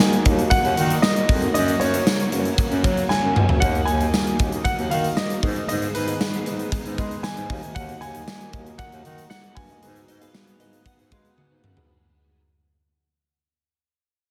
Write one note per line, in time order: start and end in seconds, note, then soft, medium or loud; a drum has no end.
0.00 0.49 D#3 medium
0.00 1.51 D#3 medium
0.00 1.57 D#3 medium
0.00 3.58 F#3 medium
0.00 0.25 A#3 medium
0.00 0.51 A#3 medium
0.00 1.53 A#3 medium
0.00 0.25 D#4 medium
0.00 0.51 D#4 medium
0.00 0.31 F#4 medium
0.00 5.39 F#4 medium
0.00 0.26 A#4 medium
0.00 0.26 D#5 medium
0.00 0.21 G#5 loud
0.00 snare loud
0.00 tambourine medium
0.13 closed hi-hat medium
0.25 0.45 D#2 medium
0.25 0.66 A#3 medium
0.25 0.66 D#4 medium
0.25 0.32 F4 medium
0.25 0.67 A#4 medium
0.25 0.67 D#5 medium
0.25 kick loud
0.25 closed hi-hat medium
0.31 0.69 F#4 medium
0.39 closed hi-hat medium
0.50 1.01 D#3 medium
0.50 1.03 A#3 medium
0.50 1.03 D#4 medium
0.50 1.04 F#5 loud
0.50 kick loud
0.50 closed hi-hat medium
0.64 0.74 D#2 loud
0.64 closed hi-hat soft
0.77 0.96 D#3 loud
0.77 1.28 A#3 medium
0.77 1.28 D#4 medium
0.77 1.28 F#4 medium
0.77 1.29 A#4 medium
0.77 0.84 D5 medium
0.77 closed hi-hat medium
0.84 1.32 D#5 medium
0.90 closed hi-hat medium
1.02 1.55 D#3 medium
1.02 1.53 A#3 medium
1.02 1.55 D#4 medium
1.02 1.51 D#5 loud
1.02 snare loud
1.02 tambourine medium
1.16 closed hi-hat medium
1.29 1.48 F2 medium
1.29 kick loud
1.29 open hi-hat medium
1.41 1.52 A#3 medium
1.41 1.52 D#4 medium
1.41 1.52 F#4 medium
1.41 1.52 A#4 medium
1.41 1.52 D#5 medium
1.41 closed hi-hat soft
1.54 1.74 F#2 loud
1.54 3.60 C#3 medium
1.54 2.58 F#3 medium
1.54 1.85 A#3 medium
1.54 5.39 A#3 medium
1.54 1.85 C#4 medium
1.54 2.58 C#4 medium
1.54 1.85 F#4 medium
1.54 2.60 F#4 loud
1.54 1.85 A#4 medium
1.54 1.86 C#5 medium
1.54 1.81 D#5 loud
1.54 closed hi-hat loud
1.68 closed hi-hat medium
1.80 2.00 F#2 loud
1.80 2.80 C#5 medium
1.80 closed hi-hat medium
1.93 2.24 A#3 medium
1.93 2.24 C#4 medium
1.93 2.24 F#4 medium
1.93 2.24 A#4 medium
1.93 2.25 C#5 medium
1.93 closed hi-hat medium
2.07 snare loud
2.07 tambourine medium
2.20 closed hi-hat medium
2.32 2.52 F#2 medium
2.32 2.73 A#3 medium
2.32 2.73 C#4 medium
2.32 2.73 F#4 medium
2.32 2.74 A#4 medium
2.32 2.39 B4 medium
2.32 closed hi-hat medium
2.40 2.77 C#5 medium
2.45 closed hi-hat medium
2.58 3.10 F#3 medium
2.58 3.10 C#4 medium
2.58 3.12 F#4 medium
2.58 kick loud
2.58 closed hi-hat medium
2.71 2.81 F#2 loud
2.71 closed hi-hat medium
2.83 3.04 F#3 loud
2.83 3.35 A#3 medium
2.83 3.35 C#4 medium
2.83 3.35 F#4 medium
2.83 3.35 A#4 medium
2.83 3.36 C#5 loud
2.83 kick loud
2.83 closed hi-hat medium
2.97 closed hi-hat medium
3.09 3.62 F#3 medium
3.09 3.62 C#4 medium
3.09 3.63 F#4 medium
3.09 3.63 G#5 loud
3.09 snare medium
3.23 3.33 F#2 medium
3.36 3.45 C#2 medium
3.36 mid tom loud
3.48 3.58 D2 medium
3.48 3.59 A#3 medium
3.48 3.59 C#4 medium
3.48 3.59 F#4 medium
3.48 3.59 A#4 medium
3.48 3.59 C#5 medium
3.48 floor tom loud
3.60 3.81 D#2 loud
3.60 4.35 D#3 medium
3.60 3.88 D#3 medium
3.60 11.86 D#3 medium
3.60 5.41 F#3 medium
3.60 3.92 A#3 medium
3.60 3.88 A#3 medium
3.60 3.92 D#4 medium
3.60 3.86 D#4 medium
3.60 3.92 F#4 medium
3.60 3.92 A#4 medium
3.60 3.93 D#5 medium
3.60 3.85 F#5 loud
3.60 kick loud
3.60 closed hi-hat medium
3.75 closed hi-hat medium
3.85 4.07 D#2 loud
3.85 4.67 D#4 medium
3.85 4.35 G#5 loud
3.85 closed hi-hat medium
3.90 4.65 A#3 soft
4.00 4.31 A#3 medium
4.00 4.31 D#4 medium
4.00 4.31 F#4 medium
4.00 4.31 A#4 medium
4.00 4.31 D#5 medium
4.00 closed hi-hat medium
4.14 snare loud
4.14 tambourine medium
4.27 closed hi-hat medium
4.39 4.59 D#2 medium
4.39 4.80 A#3 medium
4.39 4.80 D#4 medium
4.39 4.80 F#4 medium
4.39 4.80 A#4 medium
4.39 4.81 D#5 medium
4.39 kick loud
4.39 closed hi-hat medium
4.52 closed hi-hat medium
4.64 5.16 D#3 medium
4.64 5.17 A#3 medium
4.64 5.18 D#4 medium
4.64 4.89 F#5 loud
4.64 kick loud
4.64 closed hi-hat medium
4.78 4.88 D#2 loud
4.78 closed hi-hat soft
4.90 5.10 D#3 loud
4.90 5.42 A#3 medium
4.90 5.41 D#4 medium
4.90 5.42 F#4 medium
4.90 5.42 A#4 medium
4.90 5.42 D#5 medium
4.90 5.17 F5 loud
4.90 closed hi-hat medium
5.04 closed hi-hat medium
5.17 5.43 D#3 medium
5.17 5.43 A#3 medium
5.17 5.42 D#4 medium
5.17 5.67 D#5 loud
5.17 snare loud
5.17 tambourine medium
5.30 closed hi-hat medium
5.42 6.16 G#2 medium
5.42 5.62 G#2 loud
5.42 7.47 G#3 medium
5.42 5.95 G#3 medium
5.42 5.94 B3 medium
5.42 7.48 B3 medium
5.42 5.94 D#4 medium
5.42 5.96 D#4 medium
5.42 5.93 G#4 medium
5.42 7.48 G#4 medium
5.42 5.95 G#4 medium
5.42 5.95 B4 medium
5.42 5.95 D#5 medium
5.42 kick loud
5.42 open hi-hat medium
5.56 closed hi-hat medium
5.68 5.88 G#2 loud
5.68 5.74 D#5 loud
5.68 closed hi-hat medium
5.82 closed hi-hat medium
5.94 6.14 G#2 loud
5.94 6.72 D#4 soft
5.94 6.72 G#4 medium
5.94 6.94 B4 loud
5.94 closed hi-hat medium
6.07 6.38 B3 medium
6.07 6.38 D#4 medium
6.07 6.38 G#4 medium
6.07 6.38 B4 medium
6.07 6.39 D#5 medium
6.07 closed hi-hat medium
6.21 snare loud
6.21 tambourine medium
6.34 closed hi-hat medium
6.46 6.66 G#2 medium
6.46 6.87 B3 medium
6.46 6.87 D#4 medium
6.46 6.87 G#4 medium
6.46 6.87 B4 medium
6.46 6.87 D#5 medium
6.46 closed hi-hat medium
6.59 closed hi-hat medium
6.72 7.22 G#3 medium
6.72 7.24 D#4 medium
6.72 7.25 G#4 medium
6.72 kick loud
6.72 closed hi-hat medium
6.85 6.95 G#2 medium
6.85 closed hi-hat soft
6.97 7.18 G#3 loud
6.97 7.49 B3 medium
6.97 7.48 D#4 medium
6.97 7.49 G#4 medium
6.97 7.49 B4 medium
6.97 7.49 D#5 loud
6.97 kick loud
6.97 closed hi-hat medium
7.11 closed hi-hat medium
7.23 7.50 G#3 medium
7.23 7.48 D#4 medium
7.23 7.51 G#4 medium
7.23 7.77 G#5 loud
7.23 snare loud
7.23 tambourine medium
7.37 7.46 G#2 medium
7.37 closed hi-hat medium
7.49 7.59 D#2 loud
7.49 8.23 D#3 medium
7.49 8.78 D#3 medium
7.49 9.80 F#3 medium
7.49 8.01 A#3 medium
7.49 9.80 A#3 medium
7.49 8.02 A#3 medium
7.49 8.01 D#4 medium
7.49 11.85 F#4 medium
7.49 8.01 F#4 medium
7.49 8.02 A#4 medium
7.49 8.02 D#5 medium
7.49 kick loud
7.49 open hi-hat medium
7.63 7.72 D2 medium
7.63 closed hi-hat soft
7.75 7.95 D#2 loud
7.75 8.02 F#5 loud
7.75 kick loud
7.75 closed hi-hat loud
7.89 closed hi-hat medium
8.01 8.21 D#2 loud
8.01 8.79 A#3 soft
8.01 8.80 D#4 medium
8.01 8.81 G#5 loud
8.01 closed hi-hat medium
8.14 8.45 A#3 medium
8.14 8.45 D#4 medium
8.14 8.45 F#4 medium
8.14 8.45 A#4 medium
8.14 8.46 D#5 medium
8.14 closed hi-hat medium
8.28 snare loud
8.28 tambourine medium
8.41 closed hi-hat medium
8.53 8.73 D#2 loud
8.53 8.94 A#3 medium
8.53 8.94 D#4 medium
8.53 8.59 F4 medium
8.53 8.94 A#4 medium
8.53 8.95 D#5 medium
8.53 kick loud
8.53 closed hi-hat medium
8.60 8.97 F#4 medium
8.66 closed hi-hat medium
8.78 9.30 D#3 medium
8.78 9.30 A#3 medium
8.78 9.32 D#4 medium
8.78 9.28 F#5 loud
8.78 kick loud
8.78 closed hi-hat medium
8.92 9.02 D#2 loud
8.92 closed hi-hat medium
9.04 9.24 D#3 loud
9.04 9.56 A#3 medium
9.04 9.56 D#4 medium
9.04 9.56 F#4 medium
9.04 9.56 A#4 medium
9.04 9.56 D#5 medium
9.04 closed hi-hat medium
9.18 closed hi-hat medium
9.30 12.40 D#3 medium
9.30 9.81 A#3 medium
9.30 9.83 D#4 medium
9.30 9.57 F#5 loud
9.30 snare loud
9.30 tambourine medium
9.44 closed hi-hat medium
9.55 9.76 G2 medium
9.55 11.33 G#5 medium
9.55 kick loud
9.55 open hi-hat medium
9.69 9.79 A#3 medium
9.69 9.80 D#4 medium
9.69 9.80 F#4 medium
9.69 9.80 A#4 medium
9.69 9.80 D#5 medium
9.69 closed hi-hat medium
9.81 10.56 G#2 medium
9.81 10.02 G#2 loud
9.81 10.85 G#3 medium
9.81 11.87 G#3 medium
9.81 10.13 B3 medium
9.81 11.87 B3 medium
9.81 10.13 D#4 medium
9.81 10.86 D#4 medium
9.81 10.13 F#4 medium
9.81 10.13 G#4 medium
9.81 10.87 G#4 medium
9.81 10.13 B4 medium
9.81 closed hi-hat medium
9.96 closed hi-hat medium
10.08 10.28 G#2 loud
10.08 10.22 D#5 medium
10.08 closed hi-hat medium
10.21 10.52 B3 medium
10.21 10.52 D#4 medium
10.21 10.52 F#4 medium
10.21 10.52 G#4 medium
10.21 10.52 B4 loud
10.21 10.61 F5 loud
10.21 closed hi-hat medium
10.34 snare loud
10.34 tambourine medium
10.47 closed hi-hat medium
10.59 10.79 G#2 medium
10.59 11.01 B3 medium
10.59 11.01 D#4 medium
10.59 11.01 F#4 medium
10.59 11.01 G#4 medium
10.59 11.01 B4 loud
10.59 10.87 D#5 medium
10.59 closed hi-hat medium
10.73 closed hi-hat medium
10.85 11.37 G#3 medium
10.85 11.38 D#4 medium
10.85 11.39 G#4 medium
10.85 11.13 F#5 loud
10.85 kick loud
10.85 closed hi-hat medium
10.99 11.08 G#2 loud
10.99 closed hi-hat soft
11.11 11.31 G#3 loud
11.11 11.63 B3 medium
11.11 11.63 D#4 medium
11.11 11.63 F#4 medium
11.11 11.63 G#4 medium
11.11 11.63 B4 medium
11.11 11.36 F5 loud
11.11 kick loud
11.11 closed hi-hat medium
11.25 closed hi-hat medium
11.37 12.40 G#3 medium
11.37 12.40 D#4 medium
11.37 12.40 G#4 medium
11.37 11.86 F#5 medium
11.37 high tom medium
11.51 11.60 G#2 medium
11.64 11.73 F#2 loud
11.64 mid tom loud
11.76 11.86 G2 medium
11.76 11.86 B3 medium
11.76 11.87 D#4 medium
11.76 11.87 F#4 medium
11.76 11.87 G#4 medium
11.76 11.87 B4 loud
11.76 floor tom loud